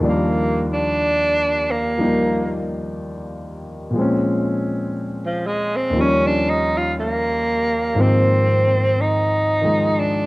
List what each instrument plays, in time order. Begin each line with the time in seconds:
0.00 grand piano D#2 D#3 F3 G3
0.04 tenor saxophone A#3, grand piano D4
0.73 tenor saxophone D4
1.71 tenor saxophone A#3
1.98 grand piano F3 G3 A#3 D#4
3.91 grand piano A#2 F3
3.96 grand piano G#3 C4
4.01 grand piano C#4
5.26 tenor saxophone F3
5.47 tenor saxophone G#3
5.76 tenor saxophone C4
5.90 grand piano D#2 D#3
5.95 grand piano F3 G3
6.00 grand piano C#4, tenor saxophone C#4
6.27 tenor saxophone D4
6.49 tenor saxophone D#4
6.77 tenor saxophone F4
7.00 tenor saxophone A#3
7.95 grand piano G#2 D#3 F3 A#3
8.00 grand piano C4, tenor saxophone C4
9.01 tenor saxophone D#4
9.62 grand piano D#3 F3 G#3
10.00 tenor saxophone D4